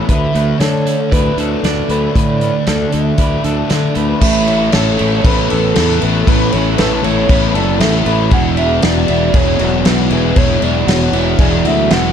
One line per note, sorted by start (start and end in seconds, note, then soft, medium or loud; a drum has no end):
0.00 0.35 A3 medium
0.00 0.12 E4 medium
0.00 0.13 E4 medium
0.00 0.85 A4 medium
0.09 0.26 D2 medium
0.09 0.58 D3 medium
0.09 1.39 D3 medium
0.09 0.60 B4 medium
0.09 0.58 E5 loud
0.09 kick loud
0.09 closed hi-hat medium
0.35 0.52 D2 medium
0.35 2.42 A3 medium
0.35 0.86 A3 medium
0.35 closed hi-hat medium
0.59 1.63 D3 medium
0.59 0.95 D3 medium
0.59 1.37 D4 medium
0.59 1.13 A4 medium
0.59 1.13 C#5 loud
0.59 snare loud
0.59 closed hi-hat medium
0.86 1.89 A3 medium
0.86 1.91 A4 medium
0.86 closed hi-hat medium
1.11 1.29 D2 medium
1.11 2.41 E4 medium
1.11 1.65 B4 loud
1.11 1.39 B4 medium
1.11 1.64 D5 medium
1.11 kick loud
1.11 closed hi-hat medium
1.37 1.54 D2 medium
1.37 2.67 D4 medium
1.37 1.89 A4 medium
1.37 closed hi-hat medium
1.63 1.81 D2 medium
1.63 2.14 D3 medium
1.63 1.90 A4 medium
1.63 2.94 D5 medium
1.63 snare loud
1.63 closed hi-hat medium
1.89 2.06 D2 medium
1.89 2.40 A3 medium
1.89 2.17 A4 medium
1.89 2.92 A4 medium
1.89 2.15 B4 medium
1.89 closed hi-hat medium
2.15 2.50 A2 medium
2.15 2.66 D3 medium
2.15 3.45 D3 medium
2.15 2.67 B4 medium
2.15 2.93 D5 loud
2.15 kick loud
2.15 closed hi-hat medium
2.41 2.91 A3 medium
2.41 3.71 A3 medium
2.41 closed hi-hat medium
2.67 2.84 D2 medium
2.67 3.69 D3 medium
2.67 3.43 D4 medium
2.67 3.18 A4 medium
2.67 snare loud
2.67 closed hi-hat medium
2.91 3.11 D2 medium
2.91 3.95 A3 medium
2.91 3.93 A4 medium
2.91 3.69 E5 loud
2.91 closed hi-hat medium
3.18 3.35 D2 medium
3.18 4.21 E4 medium
3.18 3.44 B4 medium
3.18 3.68 D5 medium
3.18 kick loud
3.18 closed hi-hat medium
3.44 3.62 D2 medium
3.44 4.22 D4 medium
3.44 3.96 A4 medium
3.44 closed hi-hat medium
3.69 3.87 D3 medium
3.69 4.22 D3 medium
3.69 4.21 D5 medium
3.69 snare loud
3.69 closed hi-hat medium
3.94 4.13 D2 medium
3.94 4.22 A3 medium
3.94 4.21 A4 medium
3.94 4.20 B4 medium
3.94 closed hi-hat medium
4.20 4.69 A1 medium
4.20 5.00 A2 medium
4.20 5.50 A2 medium
4.20 4.99 E3 loud
4.20 5.50 A3 medium
4.20 4.97 A3 loud
4.20 4.73 B4 medium
4.20 4.74 E5 loud
4.20 kick loud
4.20 crash loud
4.20 crash medium
4.47 4.99 E4 medium
4.47 4.97 C#5 medium
4.47 crash medium
4.72 4.97 A1 loud
4.72 6.02 C#4 medium
4.72 5.23 A4 medium
4.72 5.25 A4 medium
4.72 5.25 C#5 medium
4.72 snare loud
4.72 crash medium
4.98 5.23 A1 medium
4.98 5.73 A2 medium
4.98 5.76 E3 medium
4.98 5.74 A3 medium
4.98 6.01 E4 medium
4.98 6.27 C#5 medium
4.98 crash medium
5.24 5.48 A1 loud
5.24 5.75 B3 medium
5.24 6.00 A4 medium
5.24 5.76 B4 loud
5.24 5.50 B4 medium
5.24 kick loud
5.24 crash loud
5.50 5.75 A1 medium
5.50 7.57 E3 medium
5.50 7.56 E4 medium
5.50 6.02 A4 medium
5.50 crash medium
5.74 6.00 E2 medium
5.74 6.25 A2 medium
5.74 6.28 E3 medium
5.74 6.27 A3 loud
5.74 7.30 B3 medium
5.74 7.08 B3 medium
5.74 5.99 A4 medium
5.74 snare loud
5.74 crash loud
6.00 6.25 A1 loud
6.00 6.53 E4 medium
6.00 6.29 A4 medium
6.00 6.78 A4 medium
6.00 6.27 B4 medium
6.00 crash medium
6.27 6.50 A1 medium
6.27 7.02 A2 medium
6.27 7.55 A2 medium
6.27 7.03 E3 loud
6.27 7.55 A3 medium
6.27 7.02 A3 loud
6.27 6.79 B4 medium
6.27 6.54 B4 loud
6.27 kick loud
6.27 crash medium
6.52 6.77 A1 medium
6.52 7.05 E4 medium
6.52 6.77 C#5 loud
6.52 7.04 C#5 medium
6.52 crash medium
6.77 7.02 A1 loud
6.77 8.07 C#4 medium
6.77 7.29 A4 medium
6.77 7.05 B4 medium
6.77 snare loud
6.77 crash medium
7.03 7.27 A1 medium
7.03 7.77 A2 medium
7.03 7.79 E3 medium
7.03 7.79 A3 loud
7.03 8.07 E4 medium
7.03 7.56 C#5 loud
7.03 8.33 C#5 medium
7.03 crash medium
7.29 7.52 A1 loud
7.29 7.81 B3 medium
7.29 8.05 A4 medium
7.29 7.54 B4 medium
7.29 kick loud
7.29 crash medium
7.54 7.78 F#1 medium
7.54 9.61 E3 medium
7.54 9.60 E4 medium
7.54 8.06 A4 medium
7.54 7.81 D5 medium
7.54 crash medium
7.79 8.04 A1 loud
7.79 8.29 A2 medium
7.79 8.32 E3 medium
7.79 8.31 A3 loud
7.79 9.86 B3 medium
7.79 8.83 B3 medium
7.79 8.19 E5 loud
7.79 snare loud
7.79 crash medium
8.06 8.29 A1 medium
8.06 8.57 E4 medium
8.06 8.32 A4 medium
8.06 11.56 B4 medium
8.06 crash medium
8.30 8.79 E1 loud
8.30 9.10 E2 loud
8.30 9.60 E2 medium
8.30 9.07 B2 medium
8.30 10.36 E3 medium
8.30 9.07 E3 loud
8.30 8.81 G#4 loud
8.30 8.56 F#5 loud
8.30 kick loud
8.30 crash medium
8.57 9.09 E4 medium
8.57 9.09 E5 medium
8.57 8.82 E5 loud
8.57 crash medium
8.82 9.07 E1 loud
8.82 10.87 B3 medium
8.82 9.33 F#4 medium
8.82 9.34 G#4 medium
8.82 9.37 D5 loud
8.82 snare loud
8.82 crash medium
9.08 9.32 E1 medium
9.08 9.82 E2 medium
9.08 9.84 B2 medium
9.08 9.86 E3 medium
9.08 10.12 E4 medium
9.08 10.62 E5 medium
9.08 crash medium
9.33 9.57 E1 loud
9.33 9.85 G#3 medium
9.33 9.60 G#4 medium
9.33 10.10 G#4 medium
9.33 9.87 C#5 loud
9.33 kick loud
9.33 crash medium
9.59 9.83 E1 medium
9.59 10.89 F#3 medium
9.59 11.64 E4 medium
9.59 10.11 F#4 medium
9.59 crash medium
9.84 10.09 B1 medium
9.84 10.34 E2 medium
9.84 10.35 B2 medium
9.84 10.37 E3 loud
9.84 11.14 G#3 medium
9.84 11.91 B3 medium
9.84 10.10 B4 medium
9.84 snare loud
9.84 crash medium
10.10 10.34 E1 medium
10.10 10.63 E4 medium
10.10 10.34 G#4 medium
10.10 10.86 G#4 medium
10.10 10.39 B4 loud
10.10 crash medium
10.35 10.60 E1 loud
10.35 11.12 E2 medium
10.35 11.65 E2 medium
10.35 11.12 B2 medium
10.35 12.13 E3 medium
10.35 11.12 E3 loud
10.35 10.86 G#4 medium
10.35 10.64 C#5 loud
10.35 kick loud
10.35 crash medium
10.62 10.85 E1 medium
10.62 11.13 E4 medium
10.62 10.91 D5 loud
10.62 11.13 E5 medium
10.62 crash medium
10.87 11.11 E1 loud
10.87 12.13 B3 medium
10.87 11.38 F#4 medium
10.87 11.39 G#4 medium
10.87 11.40 C#5 loud
10.87 snare loud
10.87 crash medium
11.12 11.37 E1 medium
11.12 11.89 E2 medium
11.12 11.89 B2 medium
11.12 11.92 E3 medium
11.12 12.13 E4 medium
11.12 12.13 E5 medium
11.12 crash medium
11.38 11.62 E1 loud
11.38 11.89 G#3 medium
11.38 11.64 G#4 medium
11.38 12.13 G#4 medium
11.38 11.69 D5 loud
11.38 kick loud
11.38 crash medium
11.64 11.87 D2 medium
11.64 12.13 F#3 medium
11.64 12.13 E4 medium
11.64 12.13 F#4 medium
11.64 11.92 E5 loud
11.64 crash medium
11.90 12.13 E1 medium
11.90 12.13 E2 medium
11.90 12.13 B2 medium
11.90 12.13 E3 medium
11.90 12.13 G#3 medium
11.90 12.13 B3 medium
11.90 12.13 F#5 loud
11.90 snare loud
11.90 crash medium